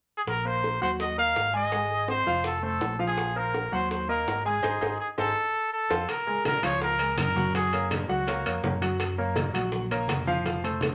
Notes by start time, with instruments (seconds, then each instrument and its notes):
0.17 trumpet G#4
0.27 fingered electric bass A#1, trumpet A#4, high bongo
0.45 grand piano A#3 A#4 C5, trumpet C5
0.64 high bongo
0.82 fingered electric bass D#2, grand piano F#3 F#4 F#5, trumpet C5
1.00 trumpet D#5, high bongo
1.18 grand piano A#3 A#4 D#5, trumpet F5
1.36 fingered electric bass G#1, high bongo, low bongo
1.53 grand piano G#3 G#4 G#5, trumpet D#5
1.72 grand piano G#3 G#4 G#5, high bongo
1.90 high bongo
2.08 grand piano C4 C5 D#5, trumpet C5, high bongo
2.26 fingered electric bass F1, grand piano F3 F4 F5, high bongo
2.44 trumpet A4, high bongo
2.63 grand piano A3 A4 C5, trumpet A4
2.81 fingered electric bass A#1, high bongo, low bongo
2.99 grand piano F3 F4 F5, high bongo
3.07 trumpet G#4
3.18 high bongo
3.36 grand piano A#3 A#4 C5, trumpet A#4
3.54 high bongo
3.72 fingered electric bass D#2, grand piano F#3 F#4 F#5, trumpet C5
3.91 trumpet C5, high bongo
4.08 grand piano A#3 A#4 D#5, trumpet A#4
4.27 fingered electric bass G#1, high bongo, low bongo
4.45 grand piano G#3 G#4 G#5, trumpet G#4
4.63 fingered electric bass G#1, grand piano D#4 G#4 C5, high bongo
4.81 fingered electric bass G#1, grand piano D#4 G#4 C5, high bongo
5.00 trumpet G#4
5.18 fingered electric bass G#1, grand piano D#4 G#4 C5, trumpet A4, high bongo
5.73 trumpet A4
5.90 fingered electric bass F2, grand piano F4 A4 C5, high bongo
6.09 trumpet A#4, high bongo, high conga, high timbale
6.27 grand piano G#3 G#4 A#4, high conga
6.45 trumpet A#4, high bongo, high conga, high timbale
6.63 fingered electric bass C#2, grand piano F3 F4 F5, trumpet C#5, high conga, high timbale
6.81 trumpet A#4, high bongo, high conga
6.99 grand piano G#3 G#4 A#4, high conga, high timbale
7.17 fingered electric bass F#2, trumpet A#4, high bongo, low bongo, high conga, high timbale
7.36 grand piano F#3 F#4 F#5, high conga
7.54 grand piano F#3 F#4 F#5, trumpet G#4, high bongo, high conga, high timbale
7.73 grand piano A#3 A#4 C#5, high bongo, high conga, high timbale
7.91 high bongo, high conga, high timbale
8.09 fingered electric bass C#2, grand piano F#3 F#4 F#5, trumpet F#4, high bongo
8.27 grand piano A#3 A#4 C#5, high bongo, high conga, high timbale
8.46 fingered electric bass F2, grand piano A#3 A#4 C#5, high conga, high timbale
8.63 fingered electric bass F#2, grand piano A#3 A#4 C#5, high bongo, low bongo, high conga, low timbale
8.82 grand piano F#3 F#4 F#5, high bongo, high timbale
9.00 high bongo, high conga, high timbale
9.18 grand piano A#3 A#4 C#5, high conga
9.36 high bongo, high conga, high timbale
9.54 fingered electric bass A#1, grand piano F#3 F#4 F#5, high conga, high timbale
9.72 high bongo, high conga
9.90 grand piano A#3 A#4 C#5, high conga, high timbale
10.08 fingered electric bass F1, high bongo, low bongo, high conga, high timbale
10.26 grand piano F3 F4 F5, high conga
10.45 grand piano F3 F4 F5, high bongo, high conga, high timbale
10.63 grand piano A3 A4 C5, high bongo, high conga, high timbale
10.81 high bongo, high conga, high timbale